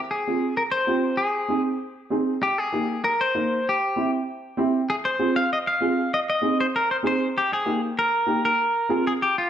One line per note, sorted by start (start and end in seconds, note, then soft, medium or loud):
0.11 0.57 G#4 medium
0.27 0.49 C4 medium
0.27 0.49 F4 medium
0.27 0.49 G#4 medium
0.57 0.62 A#4 medium
0.72 1.15 C5 loud
0.87 1.09 C4 medium
0.87 1.09 F4 medium
0.87 1.10 G4 medium
1.17 1.61 G#4 medium
1.49 1.71 C4 medium
1.49 1.71 D#4 medium
1.49 1.71 G#4 medium
2.10 2.32 C4 medium
2.10 2.33 D#4 medium
2.10 2.33 G#4 medium
2.43 2.58 G4 medium
2.58 3.04 G#4 medium
2.72 2.94 A#3 medium
2.72 2.95 D#4 medium
2.72 2.95 G4 medium
3.04 3.20 A#4 medium
3.21 3.68 C5 loud
3.35 3.56 A#3 medium
3.35 3.56 D#4 medium
3.35 3.56 A#4 medium
3.69 4.10 G4 medium
3.96 4.18 C4 medium
3.96 4.18 E4 medium
3.96 4.18 G4 medium
4.57 4.79 C4 medium
4.57 4.79 E4 medium
4.57 4.80 G4 medium
4.90 4.95 G#4 medium
5.05 5.36 C5 medium
5.19 5.41 C4 medium
5.19 5.41 F4 medium
5.19 5.41 G#4 medium
5.36 5.50 F5 loud
5.53 5.58 D#5 medium
5.67 6.13 F5 medium
5.81 6.02 C4 medium
5.81 6.03 F4 medium
5.81 6.03 G#4 medium
6.14 6.19 D#5 medium
6.30 6.57 D#5 medium
6.42 6.64 C4 medium
6.42 6.64 D#4 medium
6.42 6.64 G#4 medium
6.60 6.65 C5 loud
6.76 6.90 A#4 medium
6.91 6.96 C5 medium
7.03 7.25 C4 medium
7.03 7.26 D#4 medium
7.03 7.26 G#4 medium
7.07 7.27 C5 medium
7.38 7.52 G4 medium
7.53 7.81 G#4 medium
7.66 7.87 A#3 medium
7.66 7.88 D#4 medium
7.66 7.88 G4 medium
7.99 8.44 A#4 medium
8.26 8.49 A#3 medium
8.26 8.49 D#4 medium
8.26 8.49 G4 medium
8.45 9.07 A#4 medium
8.89 9.11 C4 medium
8.89 9.11 F4 medium
8.89 9.11 G#4 medium
9.07 9.12 G#4 medium
9.22 9.36 G4 medium
9.38 9.50 F4 medium